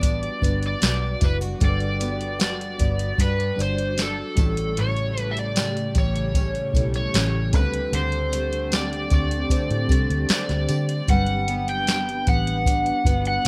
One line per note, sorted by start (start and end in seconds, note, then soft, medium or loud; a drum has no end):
0.00 0.27 A1 medium
0.00 0.41 G3 medium
0.00 1.60 G3 loud
0.00 4.33 G3 medium
0.00 0.41 B3 medium
0.00 0.80 D4 medium
0.00 1.20 F#4 medium
0.00 4.33 F#4 medium
0.00 0.43 B4 medium
0.00 0.65 D5 loud
0.00 4.33 D5 medium
0.00 kick medium
0.00 closed hi-hat medium
0.00 tambourine soft
0.23 closed hi-hat soft
0.41 0.74 G1 medium
0.41 1.29 G3 medium
0.41 1.99 B3 medium
0.41 1.30 D4 medium
0.41 1.30 F#4 medium
0.41 1.31 B4 medium
0.41 kick medium
0.41 closed hi-hat medium
0.41 tambourine soft
0.63 1.26 D5 medium
0.63 closed hi-hat soft
0.81 1.14 B1 medium
0.81 3.17 D4 medium
0.81 snare loud
0.81 closed hi-hat medium
0.81 tambourine medium
1.21 1.53 F#1 medium
1.21 1.41 E4 medium
1.21 kick medium
1.21 closed hi-hat medium
1.21 tambourine medium
1.25 1.35 B4 medium
1.41 2.38 F#4 medium
1.41 closed hi-hat soft
1.59 2.76 G1 loud
1.59 2.77 G3 medium
1.59 4.81 G3 medium
1.59 2.77 D4 medium
1.59 2.78 F#4 medium
1.59 1.68 A4 medium
1.59 kick medium
1.59 closed hi-hat medium
1.59 tambourine soft
1.65 2.82 B4 medium
1.65 2.38 D5 medium
1.80 closed hi-hat soft
2.00 2.77 B3 medium
2.00 closed hi-hat medium
2.00 tambourine soft
2.21 closed hi-hat soft
2.39 4.45 F#4 medium
2.39 snare loud
2.39 closed hi-hat medium
2.39 tambourine medium
2.43 3.23 D5 medium
2.61 closed hi-hat soft
2.79 3.11 G1 medium
2.79 3.58 B3 medium
2.79 kick medium
2.79 closed hi-hat medium
2.79 tambourine soft
2.99 closed hi-hat soft
3.18 3.50 G2 loud
3.18 3.96 D4 medium
3.18 3.61 B4 medium
3.18 kick medium
3.18 closed hi-hat medium
3.18 tambourine soft
3.40 closed hi-hat soft
3.56 4.21 G1 medium
3.56 4.34 G3 medium
3.56 4.37 D4 medium
3.56 4.37 F#4 medium
3.56 4.38 D5 medium
3.56 tambourine soft
3.60 4.01 C5 loud
3.60 closed hi-hat medium
3.78 closed hi-hat soft
3.97 4.45 D4 medium
3.97 snare medium
3.97 closed hi-hat loud
3.97 tambourine medium
4.02 4.81 A4 medium
4.35 5.64 A1 medium
4.35 4.77 A2 medium
4.35 7.50 C#3 medium
4.35 5.63 G3 medium
4.35 7.51 A3 medium
4.35 5.63 C#4 medium
4.35 5.64 E4 medium
4.35 11.05 G4 medium
4.35 5.64 A4 medium
4.35 kick loud
4.35 closed hi-hat medium
4.35 tambourine medium
4.57 closed hi-hat medium
4.77 7.61 A2 medium
4.77 5.20 C#5 medium
4.77 closed hi-hat medium
4.96 closed hi-hat soft
5.17 5.95 G3 medium
5.17 5.32 B4 medium
5.17 closed hi-hat medium
5.31 5.37 E5 medium
5.37 5.98 D5 loud
5.37 closed hi-hat soft
5.56 8.36 G4 medium
5.56 snare loud
5.56 closed hi-hat medium
5.56 tambourine medium
5.77 closed hi-hat soft
5.95 6.59 A1 medium
5.95 6.75 G3 medium
5.95 6.92 C#5 medium
5.95 kick medium
5.95 closed hi-hat medium
5.95 tambourine soft
6.16 closed hi-hat medium
6.34 7.13 C#4 medium
6.34 kick medium
6.34 closed hi-hat medium
6.34 tambourine soft
6.55 closed hi-hat soft
6.73 7.05 B1 medium
6.73 7.50 G3 medium
6.73 8.33 G3 medium
6.73 7.53 C#4 medium
6.73 7.54 E4 medium
6.73 7.52 A4 medium
6.73 kick medium
6.73 closed hi-hat medium
6.73 tambourine soft
6.94 7.56 C#5 loud
6.94 closed hi-hat soft
7.14 7.54 A1 loud
7.14 7.61 C#4 medium
7.14 snare loud
7.14 closed hi-hat medium
7.14 tambourine medium
7.51 7.85 D2 loud
7.51 11.04 D3 medium
7.51 7.93 D3 medium
7.51 8.78 G3 medium
7.51 8.79 C4 medium
7.51 11.04 C4 medium
7.51 8.79 D4 medium
7.51 8.80 A4 medium
7.51 kick loud
7.51 closed hi-hat medium
7.51 tambourine soft
7.56 7.95 B4 medium
7.74 closed hi-hat medium
7.92 9.07 D2 loud
7.92 11.08 D3 medium
7.92 8.75 C5 medium
7.92 closed hi-hat medium
7.92 tambourine soft
8.12 closed hi-hat soft
8.32 9.10 A3 medium
8.32 closed hi-hat medium
8.32 tambourine soft
8.53 closed hi-hat soft
8.72 10.68 G4 medium
8.72 9.13 D5 loud
8.72 snare loud
8.72 closed hi-hat medium
8.72 tambourine medium
8.93 closed hi-hat soft
9.10 9.43 D2 medium
9.10 9.89 A3 medium
9.10 10.31 D5 medium
9.10 kick medium
9.10 closed hi-hat medium
9.10 tambourine soft
9.31 closed hi-hat soft
9.50 10.28 C4 medium
9.50 kick medium
9.50 closed hi-hat medium
9.50 tambourine soft
9.70 9.86 A2 medium
9.70 closed hi-hat soft
9.88 10.05 C2 medium
9.88 10.77 G3 medium
9.88 11.16 A3 medium
9.88 10.77 C4 medium
9.88 10.78 D4 medium
9.88 10.78 G4 medium
9.88 kick medium
9.88 closed hi-hat medium
9.88 tambourine soft
10.10 10.26 D2 medium
10.10 closed hi-hat soft
10.29 11.16 C4 medium
10.29 11.12 D5 medium
10.29 muted fingered electric bass stroke soft
10.29 snare loud
10.29 closed hi-hat medium
10.29 tambourine medium
10.49 10.65 D2 loud
10.49 snare soft
10.49 closed hi-hat soft
10.69 11.01 D3 loud
10.69 13.48 G4 medium
10.69 closed hi-hat medium
10.69 tambourine medium
10.89 closed hi-hat medium
11.07 12.23 G1 loud
11.07 12.25 F#3 medium
11.07 12.24 G3 medium
11.07 13.48 G3 medium
11.07 13.48 B3 medium
11.07 13.48 D4 medium
11.07 12.25 D4 medium
11.07 13.48 B4 medium
11.07 12.26 B4 medium
11.07 11.69 F#5 medium
11.07 kick loud
11.07 closed hi-hat medium
11.07 tambourine soft
11.26 closed hi-hat soft
11.48 12.26 B3 medium
11.48 closed hi-hat medium
11.68 12.28 G5 loud
11.68 closed hi-hat medium
11.87 snare loud
11.87 closed hi-hat medium
11.87 tambourine medium
12.09 closed hi-hat soft
12.27 12.90 A1 medium
12.27 13.05 B3 medium
12.27 13.26 F#5 loud
12.27 kick medium
12.27 closed hi-hat medium
12.27 tambourine soft
12.47 closed hi-hat medium
12.66 13.45 D4 medium
12.66 kick medium
12.66 closed hi-hat medium
12.66 tambourine soft
12.86 closed hi-hat soft
13.04 13.37 G1 medium
13.04 13.48 G3 medium
13.04 13.48 B3 medium
13.04 13.48 D4 medium
13.04 13.48 F#4 medium
13.04 13.48 B4 medium
13.04 kick medium
13.04 closed hi-hat medium
13.04 tambourine soft
13.25 13.47 F#5 loud
13.25 closed hi-hat soft